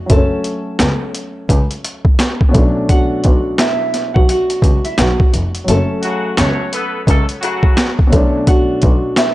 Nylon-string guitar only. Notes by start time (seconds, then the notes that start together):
0.11 A4 A5
2.90 F#4 F#5
3.59 E4 E5
4.14 F#4 F#5
4.30 F#4 F#5
4.84 E4 E5
4.98 F#4 F#5
5.68 A4 A5
8.48 F#4 F#5
9.18 E4 E5